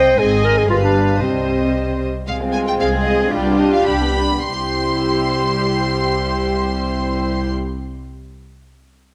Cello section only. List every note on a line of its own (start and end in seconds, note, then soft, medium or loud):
0.00 0.15 C3 soft
0.19 0.66 G#2 medium
0.69 1.21 G2 soft
1.22 2.07 C3 soft
2.79 3.28 G#4 soft
3.31 3.87 F4 soft
3.86 4.17 G4 soft
4.47 7.49 C2 soft